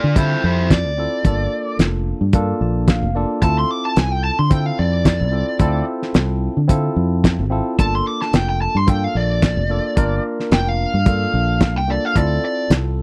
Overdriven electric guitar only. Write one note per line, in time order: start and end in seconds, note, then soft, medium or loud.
0.00 0.15 F4 medium
0.00 0.16 D5 medium
0.18 0.42 E4 medium
0.18 0.44 C5 medium
0.45 0.69 E4 medium
0.45 0.71 C5 medium
0.72 1.77 D5 medium
3.43 3.57 A5 medium
3.59 3.71 C6 medium
3.71 3.84 D6 medium
3.85 3.98 A5 medium
3.98 4.12 G#5 medium
4.12 4.24 G5 medium
4.24 4.38 A5 medium
4.39 4.51 C6 medium
4.52 4.66 G5 medium
4.66 4.78 F5 medium
4.79 5.84 D5 medium
7.80 7.93 A5 medium
7.95 8.06 C6 medium
8.07 8.21 D6 medium
8.22 8.35 A5 medium
8.35 8.48 G5 medium
8.49 8.61 G5 medium
8.62 8.77 A5 medium
8.77 8.88 C6 medium
8.89 9.04 G5 medium
9.04 9.15 F5 medium
9.17 10.22 D5 loud
10.53 10.69 G5 medium
10.69 11.74 F5 medium
11.78 11.89 G5 medium
11.91 12.05 D5 medium
12.05 12.16 F5 medium
12.17 12.43 D5 medium
12.45 12.70 D5 medium